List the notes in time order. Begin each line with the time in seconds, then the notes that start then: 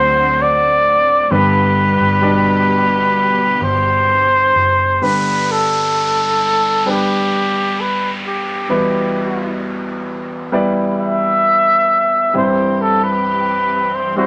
Already playing: D2 D3 F#3 A3 C4 D4 F#4 C5
0.42 D5
1.31 G1 G2 B2 D3 G3 B3 D4 G4 B4
2.00 G1
2.21 B2 G3 D4 D5
3.61 G1 C5
4.55 F#1
5.02 G2 D3 G3 B3 D4 B4, downlifter
5.52 A4
6.86 G3 B3 D4 B4
6.90 G4
7.80 B4
8.26 G4
8.69 E2 B2 G3 B3 E4 B4
10.52 G3 B3 E4 D5
11.01 E5
12.34 C2 G2 E3 G3 C4 E4 G4 C5 E5
12.81 A4
13.03 B4
13.95 C5
14.16 G3 C4 E4 F#4 C5